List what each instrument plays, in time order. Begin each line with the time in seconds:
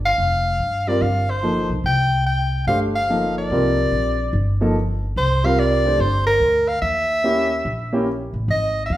Already playing: upright bass G1
0.05 soprano saxophone F5
0.18 upright bass F1
0.59 upright bass G2
0.87 grand piano G3 C4 F4 A#4, soprano saxophone D5
1.01 upright bass G1, soprano saxophone F5
1.30 soprano saxophone C5
1.43 grand piano F3 A#3 D#4 A4
1.69 upright bass B1
1.84 upright bass C2, soprano saxophone G5
2.26 soprano saxophone G5
2.67 upright bass G1, grand piano A3 D4 G4 C5, soprano saxophone F5
2.95 soprano saxophone F5
3.10 grand piano F3 A#3 D#4 A4
3.38 soprano saxophone D5
3.50 upright bass C2, grand piano G3 C4 F4 A#4
3.92 upright bass A#1
4.33 upright bass G1
4.61 grand piano F3 A#3 D#4 A4
5.16 upright bass C2, soprano saxophone C5
5.44 grand piano G3 C4 F4 A#4, soprano saxophone F5
5.59 soprano saxophone D5
5.85 grand piano A3 D4 G4 C5
5.99 upright bass G1, soprano saxophone C5
6.26 soprano saxophone A#4
6.40 upright bass D2
6.68 soprano saxophone F5
6.82 upright bass D#2, soprano saxophone E5
7.24 grand piano A#3 C#4 E4 G4
7.65 upright bass A#1
7.93 grand piano A#3 C#4 E4 G4
8.33 upright bass A1
8.48 upright bass G#1, soprano saxophone D#5
8.86 soprano saxophone E5
8.90 upright bass D#2, soprano saxophone F5